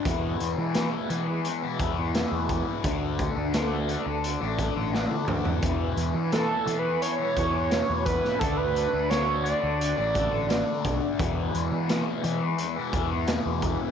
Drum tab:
HH |x-x-x-x-x-x-x-x-|x-x-x-x-x-x-----|x-x-x-x-x-x-x-x-|x-x-x-x-x-x-x-x-|
SD |----o-------o---|----o-------o---|----o-------o--o|----o-------o---|
T1 |----------------|-------------o--|----------------|----------------|
T2 |----------------|--------------o-|----------------|----------------|
FT |----------------|---------------o|----------------|----------------|
BD |o---------o---o-|o-o-------o-----|o---------o---o-|o---------o---o-|

HH |x-x-x-x-x-x-x-x-|
SD |----o-------o---|
T1 |----------------|
T2 |----------------|
FT |----------------|
BD |o---------o---o-|